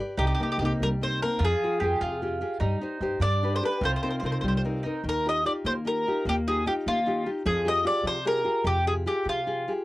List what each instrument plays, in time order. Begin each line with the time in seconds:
0.00 nylon-string guitar G4 B4 D5
0.17 upright bass C2, nylon-string guitar C3, mandolin D#4 G4
0.27 mandolin G4
0.35 mandolin G4
0.40 nylon-string guitar A#3 C4 D#4, mandolin G4
0.52 mandolin G4
0.58 upright bass C2, nylon-string guitar A#3 C4, mandolin G4
0.62 nylon-string guitar D#4, mandolin G4
0.80 upright bass C2, nylon-string guitar G3, mandolin A#4
1.01 nylon-string guitar A#3 C4 D#4, mandolin C5
1.22 nylon-string guitar A#3 C4 D#4, mandolin A#4
1.39 upright bass F2, nylon-string guitar F3, mandolin F4
1.45 mandolin G#4
1.64 nylon-string guitar F4 G#4 G5
1.80 upright bass F2, nylon-string guitar F4 G#4 G5, mandolin G4
2.01 upright bass F2, nylon-string guitar C3, mandolin F4
2.22 nylon-string guitar F4 G4 G#4
2.41 nylon-string guitar F4 G4 G#4
2.60 upright bass G2, nylon-string guitar G3, mandolin D#4
2.81 nylon-string guitar D#4 G4 C5
3.01 upright bass G2, nylon-string guitar D#4 G4 C5
3.20 upright bass G2, nylon-string guitar G3, mandolin D4 D5
3.43 nylon-string guitar D4 G4 B4
3.56 mandolin C5
3.63 nylon-string guitar D4 G4 B4, mandolin B4
3.81 upright bass C2, nylon-string guitar C3, mandolin F4 C5
3.96 mandolin C5
4.03 nylon-string guitar C4 D#4 A#4, mandolin C5
4.10 mandolin C5
4.20 upright bass C2, nylon-string guitar C4, mandolin C5
4.24 nylon-string guitar D#4 A#4, mandolin C5
4.32 mandolin C5
4.41 upright bass C2, nylon-string guitar G3, mandolin C5
4.48 mandolin C5
4.57 mandolin C5
4.64 nylon-string guitar C4 D#4 A#4
4.83 nylon-string guitar C4 D#4 A#4, mandolin D#4
5.04 upright bass D#2, nylon-string guitar D#3
5.09 mandolin A#4
5.25 nylon-string guitar D#4 F4 G4, mandolin D#5
5.45 nylon-string guitar D#4 F4 G4, mandolin D5
5.65 upright bass D#3, nylon-string guitar A#3, mandolin C5
5.85 nylon-string guitar D#4 F4 G4, mandolin A#4
6.07 nylon-string guitar D#4 F4 G4
6.25 upright bass D#2, nylon-string guitar A#3, mandolin G4
6.48 nylon-string guitar D#4 F4 G4, mandolin G#4
6.66 nylon-string guitar D#4 F4 G4, mandolin G4
6.86 upright bass D#3, nylon-string guitar A#3, mandolin F4
7.06 nylon-string guitar D#4 F4 G4
7.26 nylon-string guitar D#4 F4 G4
7.46 upright bass F2, nylon-string guitar F3, mandolin G#4
7.65 nylon-string guitar F4 G4 G#4, mandolin D#5
7.85 nylon-string guitar F4 G4 G#4, mandolin D5
8.03 nylon-string guitar C3, upright bass F3, mandolin C5
8.25 nylon-string guitar F4 G4 G#4, mandolin A#4
8.44 nylon-string guitar F4 G4 G#4
8.64 upright bass F2, nylon-string guitar C3, mandolin G4
8.87 nylon-string guitar F4 G4 G#4, mandolin G#4
9.06 nylon-string guitar F4 G4 G#4, mandolin G4
9.25 nylon-string guitar C3, upright bass F3, mandolin F4
9.47 nylon-string guitar F4 G4 G#4
9.68 nylon-string guitar F4 G4 G#4